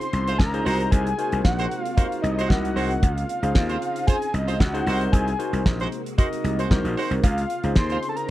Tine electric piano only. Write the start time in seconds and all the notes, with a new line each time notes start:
0.53 D#4 F4 G#4 C5
0.65 D#4 F#4 A#4 C5
1.18 D#4 F#4 A#4 C5
1.97 D#4 F#4 A#4 C5
2.49 D#4 F#4 A#4 D#5
3.43 D#4 F4 G#4 C5
4.73 D#4 F4 G#4 C5
4.86 D#4 F#4 A#4 C5
5.39 D#4 F#4 A#4 C5
6.18 D#4 F#4 A#4 D#5
6.70 D#4 F#4 A#4 C5
7.64 D#4 F4 G#4 C5